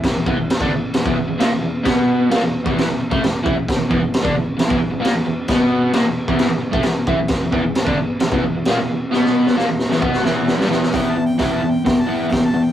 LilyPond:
<<
  \new Staff \with { instrumentName = "Harmonica" } { \time 4/4 \key e \minor \tempo 4 = 132 r1 | r1 | r1 | r1 |
r1 | r1 | \tuplet 3/2 { g''8 a''8 g''8 g''8 a''8 g''8 g''8 a''8 g''8 g''8 a''8 g''8 } | }
  \new Staff \with { instrumentName = "Overdriven electric guitar" } { \clef bass \time 4/4 \key e \minor r16 e,16 <e, e>16 e,8 <d d'>16 e,8 e,16 <e, e>16 e,16 e,16 <ais, ais>16 e,16 e,8 | <b, b>4 <ais, ais>16 e,8 <e, e>8 e,16 r16 <a, a>16 e,8 <e e'>16 e,16 | r16 e,16 <e, e>16 e,8 <d d'>16 e,8 e,16 <e, e>16 e,16 e,16 <ais, ais>16 e,16 e,8 | <b, b>4 <ais, ais>16 e,8 <e, e>8 e,16 r16 <a, a>16 e,8 <e e'>16 e,16 |
r16 e,16 <e, e>16 e,8 <d d'>16 e,8 e,16 <e, e>16 e,16 e,16 <ais, ais>16 e,16 e,8 | <b, b>4 <ais, ais>16 e,8 <e, e>16 <b, b>8 <e, e>8. <g, g>16 <e, e>8 | <e b e'>8 <e b>8 <e b e'>8 <e b>8 <e b>8 <e b e'>8 <e b>8 <e b>8 | }
  \new DrumStaff \with { instrumentName = "Drums" } \drummode { \time 4/4 <cymc bd sn>8 bd8 <cymc sn>16 bd8. <cymc sn>16 bd8. <cymc sn>4 | <cymc bd sn>4 <cymc sn>8. bd16 <cymc sn>8. bd16 <cymc sn>8 bd8 | <cymc bd sn>8 bd8 <cymc sn>16 bd8. <cymc sn>16 bd8. <cymc sn>4 | <cymc bd sn>4 <cymc sn>8. bd16 <cymc sn>8. bd16 <cymc sn>8 bd8 |
<cymc bd sn>8 bd8 <cymc sn>16 bd8. <cymc sn>16 bd8. <cymc sn>4 | sn16 sn8 sn16 sn8 sn16 sn16 bd16 sn16 sn8 sn16 sn16 sn16 sn16 | <hho bd sn>4 <hho bd sn>4 <hho bd sn>4 <hho bd sn>4 | }
>>